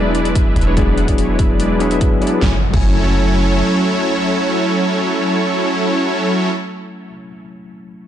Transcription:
Already playing: E1 F#3 G#3 B3 D4 E4 G#4 B4 D5
0.15 G#3 D4 E4 B4 D5, closed hi-hat
0.25 closed hi-hat
0.35 G#3 D4 E4 B4 E5, kick, closed hi-hat
0.56 E1 G#3 D4 E4 B4 E5, kick, closed hi-hat
0.61 closed hi-hat
0.67 G#3 D4 E4 B4 C#5
0.76 F#3 G#3 B3 D4 E4 G#4 B4 D5, kick, closed hi-hat
0.97 G#3 D4 E4 B4 F#5, closed hi-hat
1.06 F#3 G#3 B3 D4 E4 G#4 B4 D5, kick, closed hi-hat
1.18 G#3 D4 E4 B4 C#5, closed hi-hat
1.39 G#3 D4 E4 B4 E5, kick, closed hi-hat
1.49 G#3 D4 E4 B4 D5
1.59 G#3 D4 E4 B4 D5, closed hi-hat
1.79 F#3 G#3 B3 D4 E4 G#4 B4 C#5, closed hi-hat
1.90 F#3 G#3 B3 D4 E4 B4 E5, closed hi-hat
2.01 G#3 D4 E4 B4 E5, kick, closed hi-hat
2.11 G#3 D4 E4 B4 E5
2.21 F#3 G#3 B3 D4 E4 G#4 B4 D5, closed hi-hat
2.27 closed hi-hat
2.39 F#1 F#3 A3 C#4 E4 A4 C#5, kick, snare, impact
2.44 E4 G#5
2.70 F#1 F#3 A3 C#4 E4 A4 C#5, kick, crash
2.75 E4 G#5

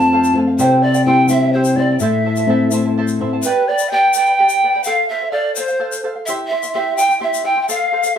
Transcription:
Already playing: F2 A3 C4 F4 A5
0.00 C5 F5, shaker
0.12 A4 C5 F5
0.24 shaker
0.34 A3 C4 F4 A4 C5 F5
0.47 C5 F5
0.59 C3 E4 G4 C5 D5 E5 G5, shaker
0.64 C5
0.82 E4 C5 D5 E5 G5
0.87 D5
0.94 E4 C5 G5, shaker
1.05 G3 C4 E4 G4 C5 E5 G5
1.28 G3 C4 E4 C5 E5 G5, shaker
1.42 E4 C5 G5
1.53 E4 G4 C5 E5 G5
1.65 shaker
1.75 G3 C4 E4 D5 E5 G5
1.79 C5
1.90 E4 C5 G5
1.98 A2 E4 A4 C5 E5, shaker
2.03 A5
2.25 E4 C5 E5 A5
2.36 E4 C5 A5, shaker
2.46 A3 C4 E4 A4 C5 E5 A5
2.71 A3 C4 E4 C5 E5 A5, shaker
2.86 E4 C5 A5
2.98 E4 A4 C5 E5 A5
3.08 shaker
3.20 A3 C4 E4 C5 E5 A5
3.33 E4 C5 A5
3.43 G4 B4 D5 G5, shaker
3.47 B5
3.67 B4 D5 G5
3.71 B5
3.78 B4 D5 B5, shaker
3.88 G4 G5 B5
3.93 B4 D5
4.13 B4 G5, shaker
4.17 D5 B5
4.26 B4 D5 B5, shaker
4.39 G4 B4 D5 G5 B5
4.49 shaker
4.63 B4 D5 G5 B5
4.75 B4 D5 B5
4.84 A4 C5 F5 G5, shaker
4.89 F5
5.09 A4 C5 E5 F5
5.22 C5 F5
5.32 A4 C5 D5 F5
5.55 A4 C5 F5, shaker
5.68 C5 F5, shaker
5.79 A4 C5 F5
5.92 shaker
6.04 A4 C5 F5
6.15 C5 F5
6.25 E4 G4 C5 E5 C6, shaker
6.29 E5
6.48 C5 E5
6.52 E4 E5 C6
6.63 E4 E5 C6, shaker
6.73 E4 G4 C5 E5 F5 C6
6.80 E5
6.96 E4 C5 E5 G5 C6, shaker
7.01 G5
7.09 E4 E5 C6, shaker
7.20 E4 G4 C5 E5 F5 C6
7.26 E5
7.34 shaker
7.44 E4 C5 E5 G5 C6
7.56 E4 E5 C6
7.61 G5
7.69 A4 C5 F5, shaker
7.93 A4 C5 F5
8.03 C5 F5, shaker

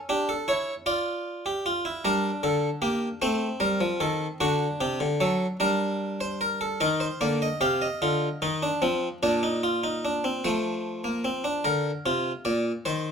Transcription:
0.09 D4 G4
0.29 A4
0.48 E4 C#5
0.86 F4 D5
1.46 G4
1.66 F4
1.85 E4
2.05 G3 D4 A#4
2.43 D3 A4
2.82 A#3 G4
3.22 A3 C4 C5
3.60 G3 A#4
3.81 F3
4.00 D#3 A4
4.40 D3 D4 F#4
4.81 C3 G4
5.00 D3
5.20 F#3 A4
5.60 G3 D4 A#4
6.21 C5
6.41 A#4
6.61 A4
6.80 D#3 D#4 A#4
7.00 C5
7.21 D3 A#3 D5
7.42 D#5
7.61 C3 G4 F5
7.82 D#5
8.02 D3 F4
8.42 D#3 D#4
8.63 D4
8.82 F3 C4
9.23 A#2 D4 D5
9.43 D#4
9.63 F4
9.84 D#4
10.05 D4
10.24 C4
10.44 F3 A3 C5
11.04 A#3
11.24 C4
11.44 D4
11.64 D3 A#4
12.06 C3 F4
12.45 A#2 D5
12.85 D#3 C5

